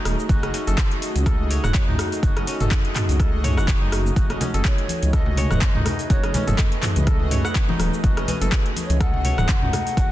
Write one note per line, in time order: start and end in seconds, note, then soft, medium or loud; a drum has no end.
0.00 0.27 A3 medium
0.00 0.34 C#4 medium
0.00 1.57 D#4 medium
0.00 10.12 D#4 medium
0.00 0.27 F#4 medium
0.00 10.12 F#4 medium
0.00 0.27 G#4 medium
0.00 0.65 A4 medium
0.00 0.96 C#5 medium
0.00 0.27 D#5 loud
0.00 0.67 F#5 loud
0.05 0.15 D#1 medium
0.05 cross-stick loud
0.05 open hi-hat medium
0.05 shaker medium
0.19 shaker medium
0.29 0.39 F#1 loud
0.29 0.64 A3 medium
0.29 0.64 F#4 medium
0.29 1.76 F#4 medium
0.29 0.64 G#4 medium
0.29 0.64 D#5 medium
0.29 kick loud
0.29 closed hi-hat medium
0.29 shaker soft
0.43 0.51 F#1 loud
0.43 0.53 C#4 medium
0.43 cross-stick medium
0.43 closed hi-hat soft
0.54 2.28 C#4 medium
0.54 open hi-hat medium
0.54 shaker loud
0.67 0.75 F#1 medium
0.67 1.23 A3 medium
0.67 1.24 F#4 medium
0.67 1.24 G#4 medium
0.67 1.26 A4 medium
0.67 1.24 D#5 medium
0.67 closed hi-hat soft
0.67 shaker medium
0.78 kick loud
0.78 cross-stick medium
0.78 clap loud
0.78 closed hi-hat medium
0.78 shaker soft
0.91 closed hi-hat soft
1.02 open hi-hat medium
1.02 shaker loud
1.15 1.58 C#2 medium
1.15 closed hi-hat soft
1.15 shaker medium
1.26 2.20 A3 medium
1.26 2.20 F#4 medium
1.26 2.20 G#4 medium
1.26 2.58 A4 medium
1.26 2.20 D#5 medium
1.26 kick loud
1.26 cross-stick loud
1.26 closed hi-hat medium
1.26 shaker soft
1.50 1.74 C#5 loud
1.50 open hi-hat medium
1.50 shaker loud
1.64 1.72 D#1 medium
1.64 2.60 F#5 loud
1.64 cross-stick medium
1.64 mid tom medium
1.64 shaker medium
1.74 2.90 C#5 medium
1.74 kick loud
1.74 clap loud
1.74 closed hi-hat medium
1.74 shaker soft
1.88 1.96 C#2 loud
1.88 3.50 D#4 medium
1.88 mid tom medium
1.99 cross-stick loud
1.99 open hi-hat medium
1.99 shaker loud
2.12 open hi-hat medium
2.12 shaker medium
2.23 2.33 F#1 loud
2.23 2.57 A3 medium
2.23 2.57 F#4 medium
2.23 3.69 F#4 medium
2.23 2.57 G#4 medium
2.23 2.57 D#5 medium
2.23 kick loud
2.23 closed hi-hat medium
2.23 shaker soft
2.36 2.44 F#1 loud
2.36 2.47 C#4 medium
2.36 cross-stick medium
2.36 closed hi-hat soft
2.47 4.21 C#4 medium
2.47 open hi-hat medium
2.47 shaker loud
2.60 2.68 F#1 medium
2.60 3.17 A3 medium
2.60 3.17 F#4 medium
2.60 3.17 G#4 medium
2.60 3.19 A4 medium
2.60 3.17 D#5 medium
2.60 closed hi-hat soft
2.60 mid tom loud
2.60 shaker medium
2.71 kick loud
2.71 cross-stick medium
2.71 clap loud
2.71 closed hi-hat medium
2.71 shaker soft
2.85 closed hi-hat soft
2.96 clap medium
2.96 mid tom medium
2.96 open hi-hat medium
2.96 shaker medium
3.09 3.58 C#2 medium
3.09 open hi-hat soft
3.09 shaker medium
3.20 4.14 A3 medium
3.20 4.14 F#4 medium
3.20 4.51 A4 medium
3.20 4.14 D#5 loud
3.20 kick loud
3.20 cross-stick medium
3.20 closed hi-hat medium
3.20 shaker soft
3.44 3.68 C#5 loud
3.44 mid tom medium
3.44 open hi-hat medium
3.44 shaker loud
3.57 3.74 F#1 loud
3.57 4.54 F#5 loud
3.57 cross-stick medium
3.57 shaker medium
3.68 4.83 C#5 medium
3.68 kick loud
3.68 clap loud
3.68 closed hi-hat medium
3.68 shaker soft
3.81 3.89 F#1 loud
3.81 5.44 D#4 medium
3.92 4.11 F#1 medium
3.92 cross-stick medium
3.92 open hi-hat medium
3.92 shaker medium
4.06 shaker medium
4.16 4.26 F#1 loud
4.16 4.51 F#4 medium
4.16 5.63 F#4 medium
4.16 4.51 G#4 medium
4.16 10.12 B4 loud
4.16 4.51 D#5 medium
4.16 kick loud
4.16 closed hi-hat medium
4.16 shaker soft
4.29 4.38 F#1 loud
4.29 4.40 C#4 medium
4.29 cross-stick medium
4.29 closed hi-hat soft
4.41 6.14 C#4 medium
4.41 open hi-hat medium
4.41 high conga medium
4.41 low conga loud
4.41 shaker medium
4.54 4.62 F#1 medium
4.54 5.11 A3 medium
4.54 5.11 F#4 medium
4.54 5.11 G#4 medium
4.54 5.13 A4 medium
4.54 5.11 D#5 medium
4.54 closed hi-hat soft
4.54 shaker medium
4.65 5.15 C#5 loud
4.65 kick loud
4.65 cross-stick medium
4.65 clap loud
4.65 closed hi-hat medium
4.65 shaker soft
4.78 closed hi-hat soft
4.88 open hi-hat medium
4.88 high conga medium
4.88 shaker loud
5.03 5.45 C#2 medium
5.03 closed hi-hat soft
5.03 high conga medium
5.03 shaker medium
5.13 6.08 A3 medium
5.13 6.08 F#4 medium
5.13 6.07 G#4 medium
5.13 6.45 A4 medium
5.13 6.07 D#5 loud
5.13 5.61 D#5 loud
5.13 kick loud
5.13 cross-stick medium
5.13 closed hi-hat medium
5.13 shaker soft
5.26 low conga medium
5.37 5.62 C#5 loud
5.37 open hi-hat medium
5.37 low conga loud
5.37 shaker medium
5.51 5.59 D#1 medium
5.51 6.47 F#5 loud
5.51 cross-stick medium
5.51 mid tom medium
5.51 high conga medium
5.51 shaker medium
5.62 6.77 C#5 medium
5.62 6.07 D#5 loud
5.62 kick loud
5.62 clap loud
5.62 closed hi-hat medium
5.62 shaker soft
5.75 5.83 C#2 loud
5.75 7.38 D#4 medium
5.75 mid tom medium
5.85 cross-stick medium
5.85 open hi-hat medium
5.85 low conga loud
5.85 shaker medium
5.99 open hi-hat medium
5.99 shaker medium
6.10 6.20 F#1 loud
6.10 6.44 A3 medium
6.10 6.44 F#4 medium
6.10 7.57 F#4 medium
6.10 6.44 G#4 medium
6.10 6.60 C#5 loud
6.10 6.44 D#5 medium
6.10 kick loud
6.10 closed hi-hat medium
6.10 shaker soft
6.23 6.31 F#1 loud
6.23 6.34 C#4 medium
6.23 cross-stick medium
6.23 closed hi-hat soft
6.34 8.08 C#4 medium
6.34 open hi-hat medium
6.34 high conga medium
6.34 low conga loud
6.34 shaker medium
6.47 6.56 F#1 medium
6.47 7.04 A3 medium
6.47 7.04 F#4 medium
6.47 7.04 G#4 medium
6.47 7.07 A4 medium
6.47 7.04 D#5 medium
6.47 closed hi-hat soft
6.47 mid tom medium
6.47 shaker soft
6.59 7.80 D#5 loud
6.59 kick loud
6.59 cross-stick medium
6.59 clap loud
6.59 closed hi-hat medium
6.59 shaker soft
6.72 closed hi-hat soft
6.83 clap medium
6.83 mid tom medium
6.83 open hi-hat medium
6.83 high conga medium
6.83 shaker medium
6.96 7.39 C#2 medium
6.96 closed hi-hat soft
6.96 high conga medium
6.96 shaker medium
7.07 8.01 A3 medium
7.07 8.01 F#4 medium
7.07 8.01 G#4 medium
7.07 8.39 A4 medium
7.07 8.01 D#5 loud
7.07 kick loud
7.07 cross-stick medium
7.07 closed hi-hat medium
7.07 high conga medium
7.07 shaker soft
7.20 low conga medium
7.31 7.55 C#5 loud
7.31 mid tom medium
7.31 open hi-hat medium
7.31 shaker medium
7.45 8.41 F#5 loud
7.45 cross-stick medium
7.45 shaker medium
7.55 kick loud
7.55 clap loud
7.55 closed hi-hat medium
7.55 shaker soft
7.68 9.31 D#4 medium
7.68 high conga loud
7.68 low conga medium
7.79 7.89 D#1 medium
7.79 cross-stick medium
7.79 open hi-hat medium
7.79 high conga loud
7.79 shaker medium
7.94 shaker medium
8.04 8.13 F#1 loud
8.04 8.38 A3 medium
8.04 8.38 F#4 medium
8.04 9.50 F#4 medium
8.04 8.38 G#4 medium
8.04 8.38 D#5 medium
8.04 kick loud
8.04 closed hi-hat medium
8.04 shaker soft
8.17 8.25 F#1 loud
8.17 8.28 C#4 medium
8.17 cross-stick medium
8.17 closed hi-hat soft
8.28 10.02 C#4 medium
8.28 8.86 B4 loud
8.28 open hi-hat loud
8.28 high conga medium
8.28 low conga loud
8.28 shaker medium
8.41 8.49 F#1 medium
8.41 8.98 A3 medium
8.41 8.98 F#4 medium
8.41 8.98 G#4 medium
8.41 9.00 A4 medium
8.41 8.98 D#5 medium
8.41 closed hi-hat soft
8.41 shaker medium
8.52 kick loud
8.52 cross-stick medium
8.52 clap loud
8.52 closed hi-hat medium
8.52 shaker soft
8.66 closed hi-hat soft
8.76 open hi-hat medium
8.76 high conga medium
8.76 shaker medium
8.85 9.02 C#5 loud
8.90 9.32 C#2 medium
8.90 closed hi-hat soft
8.90 high conga medium
8.90 shaker medium
9.00 9.95 A3 medium
9.00 9.95 F#4 medium
9.00 9.95 G#4 medium
9.00 10.12 A4 medium
9.00 9.95 D#5 loud
9.00 10.12 F#5 loud
9.00 kick loud
9.00 cross-stick medium
9.00 closed hi-hat medium
9.00 shaker soft
9.14 low conga medium
9.25 9.48 C#5 loud
9.25 open hi-hat loud
9.25 low conga medium
9.25 shaker medium
9.37 9.46 D#1 medium
9.37 10.12 F#5 loud
9.37 cross-stick medium
9.37 mid tom medium
9.37 high conga medium
9.37 shaker medium
9.49 kick loud
9.49 clap loud
9.49 closed hi-hat medium
9.49 shaker soft
9.62 9.70 C#2 loud
9.62 10.12 D#4 medium
9.62 mid tom medium
9.73 cross-stick medium
9.73 open hi-hat medium
9.73 low conga loud
9.73 shaker medium
9.87 open hi-hat medium
9.87 shaker soft
9.97 10.07 F#1 loud
9.97 10.12 A3 medium
9.97 10.12 F#4 medium
9.97 10.12 G#4 medium
9.97 10.12 D#5 medium
9.97 kick loud
9.97 closed hi-hat medium
9.97 shaker soft